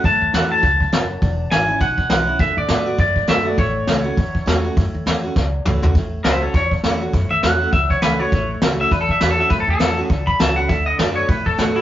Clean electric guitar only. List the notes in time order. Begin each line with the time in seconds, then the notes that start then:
0.05 A5
0.35 F#5
0.52 A5
1.51 G#5
1.81 F#5
2.11 F#5
2.40 E5
2.58 D5
3.00 D5
3.29 E5
3.47 D5
3.59 C#5
6.24 C5 E5
6.41 A4 C#5
6.55 C#5
7.31 E5
7.43 F#5
7.73 E5
7.90 C#5
8.02 B4
8.20 C#5
8.81 E5
8.92 B4
9.01 A4
9.11 E5
9.21 B4
9.31 A4
9.40 E5
9.50 B4
9.60 A4
9.70 A4
10.27 B5
10.40 A5
10.56 F#5
10.68 E5
10.86 D#5
10.98 D5
11.16 C#5
11.28 B4
11.46 A4
11.59 F#4
11.76 E4